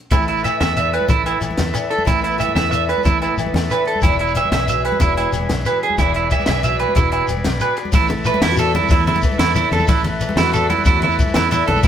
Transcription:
0.11 A1 A2 E4 A4 B4 E5, kick, closed hi-hat, muted conga, low conga, low agogo, shekere
0.21 shekere
0.28 E4, closed hi-hat
0.37 shekere
0.44 E3 E5, closed hi-hat, low agogo, shekere
0.60 E2 E4 E5, snare, closed hi-hat, muted conga, low conga, low agogo
0.68 low conga
0.76 E2 E5, closed hi-hat, shekere
0.85 low conga
0.93 E4 B4, closed hi-hat, low agogo
1.01 high conga
1.09 A1 E4, muted steel-string acoustic guitar stroke, kick, closed hi-hat, muted conga, low conga, shekere
1.26 B3 E4, closed hi-hat, low agogo, shekere
1.41 A1 E3, closed hi-hat, low agogo, shekere
1.51 high conga
1.58 E2 E4, snare, closed hi-hat, muted conga, low conga
1.66 shekere
1.74 E2, muted clean electric guitar stroke, closed hi-hat, low agogo, shekere
1.90 E4 A4, closed hi-hat
1.99 high conga
2.05 A1 A2 E4, kick, closed hi-hat, muted conga, low conga, low agogo, shekere
2.22 B3 E4, closed hi-hat
2.31 shekere
2.38 E3 E5, closed hi-hat, low agogo, shekere
2.49 high conga, low conga
2.55 E2 E5, snare, closed hi-hat, muted conga, low conga, low agogo
2.65 low conga
2.71 E2 E5, closed hi-hat, shekere
2.89 E4 B4, closed hi-hat, low agogo
2.98 high conga
3.03 A1 A2 E4, kick, closed hi-hat, muted conga, low conga, shekere
3.22 B3 E4, closed hi-hat, low agogo, shekere
3.37 A1 E3, closed hi-hat, low agogo, shekere
3.46 high conga
3.54 E2 E4, snare, closed hi-hat, muted conga, low conga
3.63 shekere
3.70 E2 B4, closed hi-hat, low agogo, shekere
3.85 E4 A4, closed hi-hat
3.96 high conga
4.01 E1 E2 E4 G#4, kick, closed hi-hat, muted conga, low conga, low agogo, shekere
4.12 shekere
4.19 G#3 E4, closed hi-hat
4.28 shekere
4.35 E3 E5, closed hi-hat, low agogo, shekere
4.45 high conga, low conga
4.51 B1 G#4 E5, snare, closed hi-hat, muted conga, low conga, low agogo
4.68 B2 E5, closed hi-hat, shekere
4.77 low conga
4.85 B3 B4, closed hi-hat, low agogo
4.92 high conga
5.00 E1 E2 E4 G#4, kick, closed hi-hat, muted conga, low conga, shekere
5.17 G#3 E4, closed hi-hat, low agogo, shekere
5.32 E1 E3, closed hi-hat, low agogo, shekere
5.41 high conga
5.49 B1, muted steel-string acoustic guitar stroke, snare, closed hi-hat, muted conga, low conga
5.58 shekere
5.65 B2 B4, closed hi-hat, low agogo, shekere
5.83 G#4, muted steel-string acoustic guitar stroke, closed hi-hat
5.90 high conga
5.98 E1 E2 E4 G#4 D5, kick, closed hi-hat, muted conga, low conga, low agogo, shekere
6.14 E4, closed hi-hat, shekere
6.31 E3 E5, kick, closed hi-hat, low agogo, shekere
6.40 high conga, low conga, shekere
6.46 B1 G#4 E5, snare, closed hi-hat, muted conga, low conga, low agogo
6.56 shekere
6.63 B2 E5, closed hi-hat, shekere
6.73 low conga
6.80 B3 B4, closed hi-hat, low conga, low agogo
6.89 high conga, low conga
6.95 E1 E4, muted steel-string acoustic guitar stroke, kick, closed hi-hat, muted conga, low conga, shekere
7.05 low conga
7.12 E4, muted steel-string acoustic guitar stroke, closed hi-hat, low conga, low agogo
7.21 low conga
7.28 E1, closed hi-hat, low conga, low agogo, shekere
7.37 high conga, low conga
7.44 B1 B4, snare, closed hi-hat, muted conga, low conga
7.60 B2 B4, closed hi-hat, low agogo, shekere
7.76 B3, muted clean electric guitar stroke, closed hi-hat, shekere
7.85 high conga
7.92 A1 A2 E4 A4 E5, muted steel-string acoustic guitar stroke, kick, ride, muted conga, low conga, shekere
7.96 B4
8.07 E4, ride, low conga, shekere
8.18 low conga
8.25 E3 B4, ride, shekere
8.34 muted conga, high conga
8.41 E2 E4, snare, ride, low conga
8.51 F#4
8.57 E2 A4, ride, shekere
8.74 E4, ride, muted conga, low conga
8.83 high conga, low conga
8.89 E2 A2 E4, muted steel-string acoustic guitar stroke, kick, ride, shekere
9.07 E4, ride, low conga
9.14 muted conga, shekere
9.22 E3, kick, ride, shekere
9.31 high conga, low conga, shekere
9.39 E2 E4, snare, ride, low conga
9.48 low conga
9.55 E2 E4, ride, muted conga, shekere
9.64 low conga
9.71 E2 E4 A4, ride, low conga
9.78 high conga, shekere
9.87 A1 A2 E4 F#5, kick, ride, muted conga, low conga, shekere
10.04 E4, ride, low conga, shekere
10.13 low conga
10.20 E3, ride, shekere
10.29 muted conga, high conga
10.36 E2 E4 F#4, snare, ride, low conga
10.53 E2 A4, ride, shekere
10.70 E4, ride, muted conga
10.78 high conga, low conga
10.85 E2 A2 E4 F#4, kick, ride, shekere
11.02 E4, ride, low conga
11.11 shekere
11.19 E3, kick, ride, shekere
11.27 high conga, low conga, shekere
11.34 E2 E4, snare, ride, low conga
11.51 E2 E4, ride, muted conga, shekere
11.60 low conga
11.67 B1 E4 A4, ride, low conga
11.76 high conga, shekere
11.83 E1 E2 E4 G#4, kick, ride, muted conga, low conga, shekere

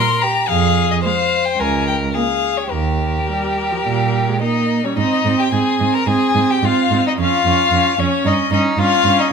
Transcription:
Already playing: A#4 C6
0.21 G4 A#5
0.49 F2 G#4 F5
0.91 D#5
1.04 G#3 C5 F5
1.45 G5
1.58 C#2 A#4 G#5
1.87 G5
2.14 A#3 G#4 F5
2.57 C#5
2.70 D#2 G4 A#4
3.29 G3
3.71 F3
3.84 A#2 G3
4.29 G#3
4.42 A#3 D#4 D#5
4.84 G3 C#4 C#5
4.97 G#2 C4 D#4 D#5
5.25 G#2 C4
5.39 G4 G5
5.52 G#2 C4 G#4 G#5
5.80 G#2 C4
5.94 A#4 A#5
6.07 G#2 C4 G#4 G#5
6.35 G#2 C4
6.50 G4 G5
6.63 G#2 C4 F4 F5
6.91 G#2 C4
7.06 D#4 D#5
7.18 F2 C#4 F4 F5
7.45 F2 C#4
7.71 F2 C#4
7.98 F2 C#4 C#5
8.25 G2 C#4 D#4 D#5
8.51 G2 C#4 D#4 D#5
8.78 G2 C#4 F4 F5
9.04 G2 C#4
9.19 D#4 D#5

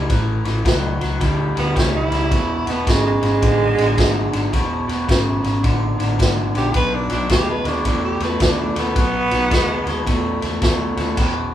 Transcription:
Already playing: G3
0.09 A1 A2 E3, kick, snare, ride
0.45 A1 A2 E3, snare, ride
0.64 C#2 A2 F#3, kick, snare, ride
1.00 C#2 A2 F#3, snare, ride
1.20 D2 A2 G3, kick, snare, ride
1.55 D2 A2 G3 B3, snare, ride
1.75 C#2 A2 G3 C#4, kick, snare, ride
1.96 E4
2.10 C#2 A2 G3, snare, ride
2.30 E1 E2 B2, kick, snare, ride
2.66 E1 E2 B2, snare, ride
2.71 B3
2.86 G#1 E2 C#3 G#3, kick, snare, ride
3.07 G#3
3.22 G#1 E2 C#3, snare, ride
3.42 A1 E2 D3, kick, snare, ride
3.78 A1 E2 D3, snare, ride
3.97 E2 D3, kick, snare, ride
4.33 G#1 E2 D3, snare, ride
4.52 E1 E2 B2, kick, snare, ride
4.88 E1 E2 B2, snare, ride
5.08 G#1 E2 C#3, kick, snare, ride
5.43 G#1 E2 C#3, snare, ride
5.63 A1 E2 D3, kick, snare, ride
5.98 A1 E2 D3, snare, ride
6.19 E2 D3, kick, snare, ride
6.55 A#1 E2 D3 G4, snare, ride
6.74 B1 B2 F#3 B4, kick, snare, ride
6.95 D4
7.10 B1 B2 F#3 D4, snare, ride
7.29 D#2 B2 G#3 G4, kick, snare, ride
7.50 B4
7.65 D#2 B2 G#3 D4, snare, ride
7.85 E2 B2 A3 D4, kick, snare, ride
8.05 G4
8.20 E2 B2 A3 B4, snare, ride
8.40 D#2 B2 A3 D4, kick, snare, ride
8.61 D4
8.75 D#2 B2 A3 B3, snare, ride
8.95 B1 B2 F#3, kick, snare, ride
9.31 B1 B2 F#3, snare, ride
9.51 D#2 B2 G#3, kick, snare, ride
9.86 D#2 B2 G#3, snare, ride
10.06 E2 B2 A3, kick, snare, ride
10.42 E2 B2 A3, snare, ride
10.62 D#2 B2 A3, kick, snare, ride
10.97 D#2 B2 A3, snare, ride
11.17 E1 E2 B2, kick, snare, crash, ride

